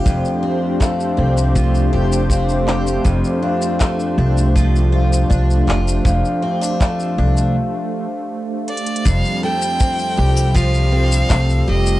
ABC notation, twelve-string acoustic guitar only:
X:1
M:4/4
L:1/16
Q:1/4=80
K:F
V:1 name="Twelve-string acoustic guitar"
[F,,F,A,CG]2 C2 A,2 C2 F,2 G2 C2 G2 | F,,2 D2 A,2 D2 F,2 F2 D2 F2 | F,,2 C D A,2 D2 z8 | F,,2 A,2 C2 G2 F,2 C2 A,2 G2 |]